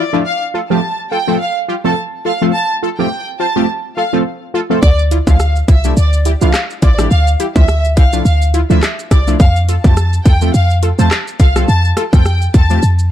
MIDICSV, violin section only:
0, 0, Header, 1, 2, 480
1, 0, Start_track
1, 0, Tempo, 571429
1, 214, Time_signature, 4, 2, 24, 8
1, 11016, End_track
2, 0, Start_track
2, 0, Title_t, "Violin section"
2, 0, Program_c, 0, 48
2, 0, Note_on_c, 0, 74, 78
2, 90, Note_off_c, 0, 74, 0
2, 214, Note_on_c, 0, 77, 104
2, 330, Note_off_c, 0, 77, 0
2, 591, Note_on_c, 0, 81, 71
2, 796, Note_off_c, 0, 81, 0
2, 938, Note_on_c, 0, 79, 84
2, 1142, Note_off_c, 0, 79, 0
2, 1178, Note_on_c, 0, 77, 97
2, 1292, Note_off_c, 0, 77, 0
2, 1552, Note_on_c, 0, 81, 85
2, 1641, Note_off_c, 0, 81, 0
2, 1896, Note_on_c, 0, 77, 95
2, 2010, Note_off_c, 0, 77, 0
2, 2137, Note_on_c, 0, 81, 107
2, 2251, Note_off_c, 0, 81, 0
2, 2511, Note_on_c, 0, 79, 81
2, 2716, Note_off_c, 0, 79, 0
2, 2858, Note_on_c, 0, 81, 89
2, 3062, Note_off_c, 0, 81, 0
2, 3338, Note_on_c, 0, 77, 90
2, 3451, Note_off_c, 0, 77, 0
2, 4055, Note_on_c, 0, 74, 110
2, 4170, Note_off_c, 0, 74, 0
2, 4432, Note_on_c, 0, 77, 78
2, 4637, Note_off_c, 0, 77, 0
2, 4777, Note_on_c, 0, 76, 78
2, 4982, Note_off_c, 0, 76, 0
2, 5019, Note_on_c, 0, 74, 80
2, 5132, Note_off_c, 0, 74, 0
2, 5391, Note_on_c, 0, 77, 79
2, 5481, Note_off_c, 0, 77, 0
2, 5737, Note_on_c, 0, 74, 82
2, 5851, Note_off_c, 0, 74, 0
2, 5976, Note_on_c, 0, 77, 98
2, 6090, Note_off_c, 0, 77, 0
2, 6353, Note_on_c, 0, 76, 89
2, 6557, Note_off_c, 0, 76, 0
2, 6697, Note_on_c, 0, 77, 96
2, 6902, Note_off_c, 0, 77, 0
2, 6940, Note_on_c, 0, 77, 84
2, 7053, Note_off_c, 0, 77, 0
2, 7311, Note_on_c, 0, 76, 76
2, 7400, Note_off_c, 0, 76, 0
2, 7655, Note_on_c, 0, 74, 80
2, 7770, Note_off_c, 0, 74, 0
2, 7896, Note_on_c, 0, 77, 102
2, 8010, Note_off_c, 0, 77, 0
2, 8269, Note_on_c, 0, 81, 73
2, 8475, Note_off_c, 0, 81, 0
2, 8616, Note_on_c, 0, 79, 88
2, 8821, Note_off_c, 0, 79, 0
2, 8856, Note_on_c, 0, 77, 99
2, 8971, Note_off_c, 0, 77, 0
2, 9230, Note_on_c, 0, 81, 88
2, 9320, Note_off_c, 0, 81, 0
2, 9573, Note_on_c, 0, 77, 94
2, 9689, Note_off_c, 0, 77, 0
2, 9815, Note_on_c, 0, 81, 106
2, 9930, Note_off_c, 0, 81, 0
2, 10189, Note_on_c, 0, 79, 80
2, 10395, Note_off_c, 0, 79, 0
2, 10540, Note_on_c, 0, 81, 84
2, 10743, Note_off_c, 0, 81, 0
2, 11016, End_track
0, 0, End_of_file